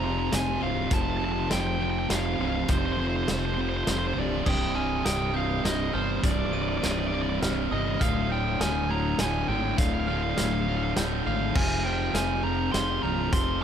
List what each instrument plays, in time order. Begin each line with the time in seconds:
Already playing: fingered electric bass F1, ambient pad D3 F3 G#4
0.02 distorted electric guitar F2 C3 F3, lead electric guitar A#5
0.12 lead electric guitar A#5
0.19 lead electric guitar A#5
0.27 distorted electric guitar F2, lead electric guitar A#5
0.31 fingered electric bass F1, distorted electric guitar C3 F3, lead electric guitar G#5, snare, closed hi-hat
0.60 fingered electric bass C1, distorted electric guitar F2 C3 F3, lead electric guitar F5
0.90 fingered electric bass F1, distorted electric guitar F2 C3 F3, ambient pad A4, lead electric guitar A5, kick, closed hi-hat
1.02 lead electric guitar A5
1.10 lead electric guitar A5
1.17 distorted electric guitar F2 C3 F3, lead electric guitar A5
1.25 lead electric guitar A5
1.32 lead electric guitar A5
1.39 lead electric guitar A5
1.49 fingered electric bass F1, distorted electric guitar F2 C3 F3, lead electric guitar G5, snare, closed hi-hat
1.60 lead electric guitar G5
1.67 lead electric guitar G5
1.75 distorted electric guitar F2 C3, lead electric guitar G5
1.80 distorted electric guitar F3, lead electric guitar G5
1.90 lead electric guitar G5
1.99 lead electric guitar G5
2.09 fingered electric bass F1, distorted electric guitar F2 C3 F3, lead electric guitar F5, snare, closed hi-hat
2.19 lead electric guitar F5
2.26 lead electric guitar F5
2.33 lead electric guitar F5
2.39 fingered electric bass C1, distorted electric guitar F2 C3 F3, lead electric guitar F5
2.48 lead electric guitar F5
2.56 lead electric guitar F5
2.64 lead electric guitar F5
2.68 fingered electric bass F1, distorted electric guitar F2 C3 F3, lead electric guitar C5, kick, closed hi-hat
2.78 lead electric guitar C5
2.86 lead electric guitar C5
2.92 lead electric guitar C5
2.98 distorted electric guitar F2 C3 F3, lead electric guitar C5
3.07 lead electric guitar C5
3.16 lead electric guitar C5
3.24 distorted electric guitar F2, lead electric guitar C5
3.28 fingered electric bass F1, distorted electric guitar C3 F3, lead electric guitar C5, snare, closed hi-hat
3.39 lead electric guitar C5
3.46 lead electric guitar C5
3.54 distorted electric guitar F2 C3 F3, lead electric guitar C5
3.61 lead electric guitar C5
3.69 lead electric guitar C5
3.77 lead electric guitar C5
3.84 fingered electric bass F1, distorted electric guitar F2 C3 F3, lead electric guitar C5, snare, closed hi-hat
3.91 lead electric guitar C5
3.99 lead electric guitar C5
4.07 lead electric guitar C5
4.14 fingered electric bass C1, distorted electric guitar F2 C3 F3, lead electric guitar C5
4.19 lead electric guitar D5
4.44 fingered electric bass C1, distorted electric guitar C2 G2 C3, ambient pad D#3 C5, glockenspiel D#6, kick, crash
4.49 lead electric guitar G5
4.74 distorted electric guitar C2 G2 C3, lead electric guitar G#5, glockenspiel F6
5.03 fingered electric bass C1, distorted electric guitar C2 G2 C3, lead electric guitar G5, glockenspiel D#6, snare, closed hi-hat
5.33 distorted electric guitar C2 G2 C3, lead electric guitar F5, glockenspiel G6
5.63 fingered electric bass C1, distorted electric guitar C2 G2 C3, lead electric guitar D#5, snare, closed hi-hat
5.93 fingered electric bass G1, distorted electric guitar C2 G2 C3, lead electric guitar C5, glockenspiel F6
6.23 fingered electric bass C1, distorted electric guitar C2 G2 C3, lead electric guitar D5, kick, closed hi-hat
6.31 lead electric guitar D5
6.40 lead electric guitar D5
6.46 lead electric guitar D5
6.52 distorted electric guitar C2 G2 C3, lead electric guitar D5, glockenspiel D#7
6.62 lead electric guitar D5
6.69 lead electric guitar D5
6.78 distorted electric guitar C2, lead electric guitar D5
6.82 fingered electric bass C1, distorted electric guitar G2 C3, lead electric guitar D5, glockenspiel D#7, snare, closed hi-hat
6.92 lead electric guitar D5
6.99 lead electric guitar D5
7.07 lead electric guitar D5
7.12 distorted electric guitar C2 G2 C3, lead electric guitar D5
7.22 lead electric guitar D5
7.30 lead electric guitar D5
7.41 fingered electric bass C1, distorted electric guitar C2 G2 C3, glockenspiel F6, snare, closed hi-hat
7.71 fingered electric bass G1, distorted electric guitar C2 G2 C3, lead electric guitar D#5, glockenspiel D#6
7.99 fingered electric bass D1, distorted electric guitar D2 A2 D3, ambient pad F3 G#4, lead electric guitar F5, glockenspiel F6, kick, closed hi-hat
8.30 distorted electric guitar D2 A2 D3, lead electric guitar G5, glockenspiel G6
8.60 fingered electric bass D1, distorted electric guitar D2 A2 D3, lead electric guitar G#5, glockenspiel F6, snare, closed hi-hat
8.89 distorted electric guitar D2 A2 D3, lead electric guitar A#5, glockenspiel G#6
9.19 fingered electric bass D1, distorted electric guitar D2 A2 D3, lead electric guitar G#5, snare, closed hi-hat
9.48 fingered electric bass G#1, distorted electric guitar D2 A2 D3, lead electric guitar G5, glockenspiel G6
9.78 fingered electric bass D1, distorted electric guitar D2 A2 D3, lead electric guitar F5, kick, closed hi-hat
9.86 lead electric guitar F5
9.94 lead electric guitar F5
10.00 lead electric guitar F5
10.07 distorted electric guitar D2 A2 D3, lead electric guitar F5, glockenspiel F6
10.17 lead electric guitar F5
10.23 lead electric guitar F5
10.31 lead electric guitar F5
10.37 fingered electric bass D1, distorted electric guitar D2 A2 D3, lead electric guitar F5, glockenspiel F6, snare, closed hi-hat
10.46 lead electric guitar F5
10.53 lead electric guitar F5
10.61 lead electric guitar F5
10.68 distorted electric guitar D2 A2 D3, lead electric guitar F5
10.77 lead electric guitar F5
10.84 lead electric guitar F5
10.96 fingered electric bass D1, distorted electric guitar D2 A2 D3, glockenspiel G6, snare, closed hi-hat
11.26 fingered electric bass G#1, distorted electric guitar D2 A2 D3, lead electric guitar F5, glockenspiel F6
11.53 fingered electric bass F1, distorted electric guitar F2 C3, ambient pad C4, lead electric guitar G#5, glockenspiel F6, kick, crash
11.57 distorted electric guitar F3
11.85 distorted electric guitar F2 C3 F3, lead electric guitar G5, glockenspiel G6
12.14 fingered electric bass F1, distorted electric guitar F2 C3 F3, lead electric guitar G#5, glockenspiel F6, snare, closed hi-hat
12.43 distorted electric guitar F2 C3 F3, lead electric guitar A#5, glockenspiel G6
12.72 fingered electric bass F1, distorted electric guitar F2 C3 F3, lead electric guitar C6, snare, closed hi-hat
13.02 fingered electric bass C1, distorted electric guitar F2 C3 F3, lead electric guitar A#5, glockenspiel F6
13.33 fingered electric bass F1, distorted electric guitar F2 C3 F3, lead electric guitar C6, kick, closed hi-hat